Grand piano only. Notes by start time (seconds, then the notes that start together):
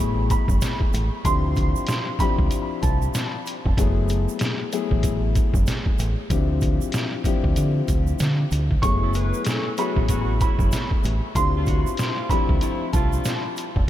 Already playing: F#3 A3 B3 E4 G#4
1.26 F3 C4 D4 E4 G4
2.20 F3 C4 D4 E4 G4
3.78 F#3 A3 B3 E4 G#4
4.73 F#3 A3 B3 E4 G#4
6.31 F3 C4 D4 E4 G4
7.26 F3 C4 D4 E4 G4
8.83 F#3 A3 B3 E4 G#4
9.78 F#3 A3 B3 E4 G#4
11.36 C4 D4 E4 F4 G4
12.31 F3 C4 D4 E4 G4